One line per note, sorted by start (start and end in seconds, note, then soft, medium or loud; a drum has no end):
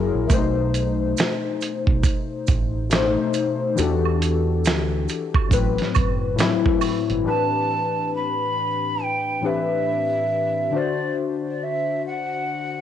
0.00 0.10 F#1 medium
0.00 0.15 F#3 loud
0.00 0.16 E4 medium
0.00 0.16 G#4 medium
0.00 0.17 A#4 loud
0.15 0.29 A#1 medium
0.27 1.13 B1 loud
0.27 1.68 B2 medium
0.27 1.69 A3 medium
0.27 0.31 E5 medium
0.27 kick loud
0.27 maracas medium
0.31 0.39 C4 medium
0.31 1.71 C5 medium
0.31 closed hi-hat medium
0.38 1.73 D#4 medium
0.74 closed hi-hat medium
0.74 maracas soft
1.17 snare loud
1.17 closed hi-hat medium
1.17 maracas medium
1.61 closed hi-hat medium
1.61 maracas soft
1.87 2.03 B1 medium
1.87 kick medium
2.03 kick medium
2.03 closed hi-hat medium
2.03 maracas medium
2.47 3.15 A1 medium
2.47 kick medium
2.47 closed hi-hat medium
2.47 maracas soft
2.90 3.64 B2 medium
2.90 3.65 A3 medium
2.90 3.65 D#4 medium
2.90 snare loud
2.90 closed hi-hat medium
2.90 maracas medium
2.94 3.66 C5 medium
3.34 closed hi-hat medium
3.34 maracas soft
3.75 4.66 E2 medium
3.75 5.16 E3 medium
3.75 5.16 D4 medium
3.75 5.17 F#4 medium
3.75 5.18 G4 medium
3.75 closed hi-hat medium
3.75 maracas medium
3.80 5.18 A4 medium
4.06 high woodblock soft
4.22 closed hi-hat medium
4.22 maracas soft
4.65 5.06 D2 medium
4.65 snare loud
4.65 closed hi-hat medium
4.65 maracas medium
5.09 closed hi-hat medium
5.09 maracas soft
5.35 kick medium
5.35 high woodblock medium
5.49 5.77 A1 loud
5.49 6.24 A2 medium
5.49 6.25 F#3 medium
5.49 6.26 C4 medium
5.49 kick medium
5.49 maracas medium
5.53 6.27 B4 medium
5.53 closed hi-hat medium
5.78 muted fingered electric bass stroke soft
5.78 snare soft
5.78 closed hi-hat soft
5.95 6.37 F#1 medium
5.95 kick medium
5.95 closed hi-hat medium
5.95 high woodblock medium
5.95 maracas soft
6.36 7.11 A2 medium
6.36 7.12 F#3 medium
6.36 7.12 C4 medium
6.36 closed hi-hat medium
6.36 maracas medium
6.40 7.13 E4 loud
6.40 snare loud
6.66 kick medium
6.81 open hi-hat soft
6.81 high woodblock medium
6.81 maracas soft
7.10 7.25 G1 medium
7.10 closed hi-hat soft
7.23 8.64 A2 medium
7.23 8.64 E3 medium
7.23 8.64 C4 medium
7.23 8.65 D4 medium
7.23 8.65 G4 medium
7.28 8.66 B4 medium
7.28 8.13 A5 loud
8.15 9.04 B5 medium
9.03 9.47 G5 medium
9.41 10.49 A2 medium
9.41 10.50 E3 medium
9.41 10.50 C4 medium
9.41 10.51 D4 medium
9.45 10.51 G4 medium
9.45 10.52 B4 medium
9.45 10.79 E5 medium
10.71 12.11 D3 medium
10.71 12.12 D4 medium
10.71 12.13 F#4 medium
10.76 12.14 C5 medium
10.76 11.15 D5 medium
11.48 11.64 D5 medium
11.63 12.05 E5 medium
12.06 12.81 F#5 medium